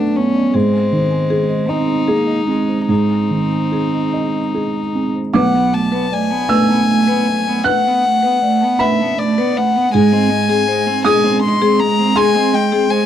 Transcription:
0.00 0.50 B1 soft
0.00 0.57 F#2 soft
0.00 0.52 A3 medium
0.00 0.18 D4 soft
0.00 0.56 A4 soft
0.00 0.57 D5 soft
0.16 0.54 B3 soft
0.16 0.56 C#4 medium
0.16 0.28 A5 soft
0.35 0.47 D5 soft
0.52 2.85 G#2 medium
0.52 1.69 G#3 medium
0.52 1.70 C4 medium
0.52 0.65 G#4 medium
0.73 0.84 G#5 soft
0.92 1.53 D#3 soft
0.92 1.04 C5 medium
1.11 1.23 G#5 soft
1.30 1.42 G#4 medium
1.30 1.92 G#4 soft
1.49 1.61 D#5 medium
1.68 2.09 C4 medium
1.68 2.89 D#4 medium
1.68 2.32 D#5 soft
1.68 1.81 G#5 medium
2.08 2.47 A#3 medium
2.08 2.20 G#4 medium
2.08 2.73 G#4 soft
2.27 2.39 D#5 soft
2.47 2.91 G#3 medium
2.47 3.14 C4 soft
2.47 2.60 G#5 soft
2.68 2.81 C5 soft
2.88 5.31 G#2 soft
2.88 5.15 C4 soft
2.88 5.11 D#4 soft
2.88 3.02 G#4 medium
3.09 3.22 G#5 soft
3.30 3.97 D#3 soft
3.30 3.44 C5 soft
3.52 3.64 G#5 soft
3.72 4.38 G#4 soft
3.72 3.85 G#4 soft
3.94 4.06 D#5 soft
4.13 4.79 D#5 soft
4.13 4.27 G#5 soft
4.54 5.19 G#4 soft
4.54 4.67 G#4 soft
4.75 4.87 D#5 soft
4.95 5.35 C4 soft
4.95 5.08 G#5 soft
5.15 5.27 C5 soft
5.33 7.61 B1 medium
5.33 5.56 A3 medium
5.33 5.47 B4 medium
5.33 5.75 F#5 medium
5.33 6.45 D6 medium
5.54 5.74 B3 medium
5.54 5.66 F#5 medium
5.72 5.94 A3 medium
5.72 5.85 F#5 medium
5.72 6.14 A5 medium
5.92 6.12 B3 medium
5.92 6.04 B4 medium
6.11 6.32 A3 medium
6.11 6.23 D5 medium
6.11 7.65 G#5 medium
6.30 6.51 B3 medium
6.30 6.42 A5 medium
6.49 6.72 A3 medium
6.49 9.94 A3 medium
6.49 6.61 B4 medium
6.49 7.61 E6 loud
6.69 6.88 B3 medium
6.69 6.80 A5 medium
6.89 7.09 A3 medium
7.08 7.29 B3 medium
7.08 7.19 B4 medium
7.27 7.49 A3 medium
7.47 7.66 B3 medium
7.64 7.88 A3 medium
7.64 7.77 B4 loud
7.64 8.81 F#5 medium
7.64 8.76 F#6 loud
7.84 8.06 B3 medium
7.84 7.96 F#5 medium
8.04 8.26 A3 medium
8.04 8.15 F#5 medium
8.23 8.43 B3 medium
8.23 8.34 B4 medium
8.42 8.64 A3 medium
8.42 8.53 D5 medium
8.61 8.84 B3 medium
8.61 8.72 A5 medium
8.79 9.03 A3 medium
8.79 8.92 B4 medium
8.79 9.20 E5 medium
8.79 9.89 B5 loud
9.00 9.19 B3 medium
9.00 9.11 A5 medium
9.18 9.40 A3 medium
9.18 9.59 D5 medium
9.38 9.58 B3 medium
9.38 9.49 B4 medium
9.56 9.77 A3 medium
9.56 9.94 F#5 medium
9.76 9.92 B3 medium
9.93 12.12 G#2 medium
9.93 10.13 G#3 medium
9.93 10.05 G#4 loud
9.93 11.03 G#5 loud
10.12 10.31 C4 medium
10.12 10.24 D#5 medium
10.29 10.50 G#3 medium
10.29 10.43 D#5 medium
10.48 10.67 C4 medium
10.48 10.61 G#4 medium
10.68 10.88 G#3 medium
10.68 10.79 C5 medium
10.86 11.06 C4 medium
10.86 10.98 G#5 medium
11.04 11.26 G#3 medium
11.04 13.06 G#3 medium
11.04 11.17 G#4 loud
11.04 11.42 G#5 medium
11.04 12.12 D#6 loud
11.24 11.43 C4 medium
11.24 11.35 G#5 medium
11.42 11.63 G#3 medium
11.42 11.81 C6 medium
11.62 11.81 C4 medium
11.62 11.73 G#4 loud
11.80 12.00 G#3 medium
11.80 12.18 A#5 medium
11.99 12.16 C4 medium
12.16 12.36 G#3 medium
12.16 12.27 G#4 loud
12.16 12.56 G#5 loud
12.16 13.06 C6 loud
12.34 12.54 C4 medium
12.34 12.46 D#5 medium
12.53 12.73 G#3 medium
12.53 12.65 D#5 medium
12.53 12.92 G5 medium
12.72 12.90 C4 medium
12.72 12.83 G#4 loud
12.90 13.06 G#3 medium
12.90 13.01 C5 medium
12.90 13.06 G#5 medium

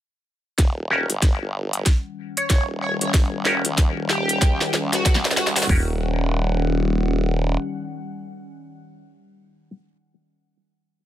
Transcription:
0.58 1.07 D#1 medium
0.58 5.66 D#3 medium
0.58 5.65 G3 medium
0.58 5.66 C#4 medium
0.58 5.66 F#5 medium
0.58 kick loud
0.58 snare soft
0.58 closed hi-hat medium
0.90 1.10 C#4 medium
0.90 1.10 F#4 medium
0.90 1.10 G4 medium
0.90 1.10 A#4 medium
1.10 1.39 G1 medium
1.10 closed hi-hat medium
1.22 kick loud
1.22 snare medium
1.22 closed hi-hat medium
1.42 1.85 G1 medium
1.73 closed hi-hat medium
1.86 kick medium
1.86 snare medium
1.86 closed hi-hat medium
2.37 2.46 C#5 medium
2.37 closed hi-hat medium
2.50 2.98 D#1 medium
2.50 2.63 C#5 medium
2.50 kick loud
2.50 snare medium
2.50 closed hi-hat medium
2.82 2.95 C#5 medium
3.01 3.44 G1 medium
3.01 3.10 C#5 medium
3.01 closed hi-hat medium
3.14 kick loud
3.14 snare medium
3.14 closed hi-hat medium
3.44 3.62 F#1 medium
3.44 3.65 C#4 medium
3.44 3.65 F#4 medium
3.44 3.65 G4 medium
3.44 3.65 A#4 loud
3.44 snare medium
3.65 3.76 C#2 medium
3.65 closed hi-hat medium
3.77 3.94 D#2 medium
3.77 kick medium
3.77 snare medium
3.77 closed hi-hat medium
3.96 4.39 D#1 loud
4.09 4.73 G4 loud
4.09 snare medium
4.29 closed hi-hat medium
4.41 5.35 C#2 loud
4.41 kick loud
4.41 snare medium
4.41 closed hi-hat medium
4.61 snare medium
4.74 snare medium
4.93 5.16 F#4 medium
4.93 snare medium
4.93 closed hi-hat medium
5.05 kick loud
5.05 snare loud
5.05 closed hi-hat medium
5.15 snare medium
5.25 snare medium
5.31 snare medium
5.37 5.67 C#2 loud
5.37 5.50 F#4 medium
5.37 snare loud
5.47 snare medium
5.56 5.65 F#4 medium
5.56 snare loud
5.56 closed hi-hat medium
5.58 closed hi-hat medium
5.60 snare medium
5.60 closed hi-hat soft
5.64 closed hi-hat soft
5.66 closed hi-hat soft
5.68 7.57 D#1 loud
5.68 9.01 D#3 medium
5.68 9.01 G3 medium
5.68 9.71 C#4 medium
5.68 9.01 C#4 medium
5.68 9.71 F#4 medium
5.68 9.71 G4 medium
5.68 9.71 A#4 medium
5.68 9.01 F#5 medium
5.68 kick loud
5.68 closed hi-hat soft
5.68 floor tom loud
5.68 open hi-hat medium

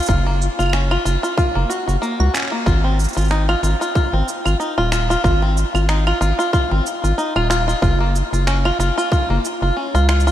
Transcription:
0.02 cabasa medium
0.06 0.48 F#1 loud
0.06 0.25 F4 medium
0.06 kick loud
0.06 cabasa medium
0.09 cabasa soft
0.26 0.40 A#3 medium
0.42 cabasa medium
0.59 0.97 F#1 medium
0.59 0.72 F4 medium
0.59 cabasa soft
0.59 claves soft
0.63 claves soft
0.66 claves soft
0.70 0.89 C#4 medium
0.70 finger snap medium
0.70 claves soft
0.74 cabasa soft
0.91 1.04 F4 medium
0.91 claves medium
1.05 1.17 F#1 medium
1.05 1.22 F4 medium
1.05 cabasa medium
1.23 1.36 F4 medium
1.23 cabasa soft
1.37 1.54 F4 medium
1.37 kick loud
1.37 cabasa soft
1.55 1.65 F#1 medium
1.55 1.69 A#3 medium
1.70 1.86 F#4 medium
1.70 cabasa medium
1.87 1.97 F#1 medium
1.87 1.96 F#4 medium
1.87 cabasa soft
2.02 2.18 A#3 medium
2.02 cabasa soft
2.20 2.29 C#2 loud
2.20 2.33 F#4 medium
2.20 claves medium
2.34 2.50 C#4 medium
2.34 finger snap medium
2.34 cabasa medium
2.37 finger snap medium
2.40 finger snap soft
2.42 finger snap soft
2.45 finger snap soft
2.48 finger snap soft
2.50 2.65 A#3 medium
2.50 finger snap soft
2.66 3.06 G#1 medium
2.66 2.83 F4 medium
2.66 kick loud
2.66 cabasa soft
2.84 2.98 C4 medium
3.00 cabasa medium
3.04 cabasa medium
3.09 cabasa soft
3.13 3.55 G#1 medium
3.13 3.29 F4 medium
3.13 cabasa soft
3.17 cabasa soft
3.21 cabasa soft
3.24 cabasa soft
3.28 3.47 D#4 medium
3.28 finger snap medium
3.28 cabasa soft
3.49 3.62 F4 medium
3.49 claves medium
3.63 3.75 G#1 medium
3.63 3.79 F4 medium
3.63 cabasa medium
3.81 3.94 F4 medium
3.81 cabasa soft
3.95 4.12 F4 medium
3.95 kick loud
3.95 cabasa soft
4.13 4.22 G#1 loud
4.13 4.27 C4 medium
4.28 cabasa medium
4.45 4.55 G#1 medium
4.45 4.58 F4 medium
4.45 cabasa soft
4.45 claves medium
4.60 4.76 D#4 medium
4.60 cabasa soft
4.78 5.16 D#1 medium
4.78 4.91 F4 loud
4.92 5.08 F4 medium
4.92 finger snap medium
4.92 cabasa medium
5.10 5.23 F4 loud
5.10 cabasa soft
5.24 5.64 G#1 medium
5.24 5.41 F4 loud
5.24 kick loud
5.24 cabasa soft
5.42 5.56 C4 medium
5.57 cabasa medium
5.74 6.13 G#1 medium
5.74 5.88 F4 medium
5.74 cabasa soft
5.74 claves medium
5.89 6.05 D#4 medium
5.89 finger snap medium
5.89 cabasa soft
6.07 6.20 F4 medium
6.07 claves medium
6.21 6.33 G#1 medium
6.21 6.37 F4 medium
6.21 cabasa medium
6.39 6.52 F4 medium
6.39 cabasa soft
6.53 6.70 F4 medium
6.53 kick loud
6.53 cabasa soft
6.71 6.81 G#1 medium
6.71 6.85 C4 medium
6.86 cabasa medium
7.04 7.13 G#1 medium
7.04 7.17 F4 medium
7.04 cabasa soft
7.18 7.34 D#4 medium
7.18 cabasa soft
7.36 7.74 D#1 medium
7.36 7.49 F4 loud
7.36 claves medium
7.50 7.66 F4 loud
7.50 finger snap medium
7.50 cabasa medium
7.68 7.81 F4 loud
7.68 cabasa soft
7.82 8.22 F#1 loud
7.82 7.99 F4 medium
7.82 kick loud
7.82 cabasa soft
8.00 8.14 A#3 medium
8.16 cabasa medium
8.33 8.71 F#1 medium
8.33 8.46 F4 medium
8.33 cabasa soft
8.47 8.63 C#4 medium
8.47 finger snap medium
8.47 cabasa soft
8.65 8.78 F4 loud
8.65 claves medium
8.79 8.91 F#1 medium
8.79 8.96 F4 loud
8.79 cabasa medium
8.98 9.10 F4 loud
8.98 cabasa soft
9.12 9.28 F4 medium
9.12 kick loud
9.12 cabasa soft
9.30 9.39 F#1 loud
9.30 9.43 A#3 medium
9.45 cabasa medium
9.62 9.71 F#1 medium
9.62 9.75 F4 medium
9.77 9.93 C#4 medium
9.94 10.32 C#2 medium
9.94 10.07 F4 loud
9.94 cabasa soft
10.09 10.25 F4 loud
10.09 finger snap medium
10.09 cabasa soft
10.20 cabasa soft
10.27 10.32 F4 medium
10.27 cabasa soft

